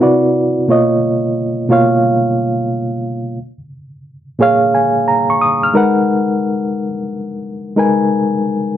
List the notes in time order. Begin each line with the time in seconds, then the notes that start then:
0.00 C3 C4 E4 F#4 B4 D5
0.68 B2 A#3 F4 C#5 D#5
1.69 B2 A#3 F4 C#5 F5
4.39 A#2 A#3 G#4 C#5 F5
4.75 G#5
5.08 A#5
5.30 C#6
5.41 D#6
5.63 F6
5.74 G#3 D#4 A#4 B4 F#5
7.76 G#3 D#4 A#4 B4 G#5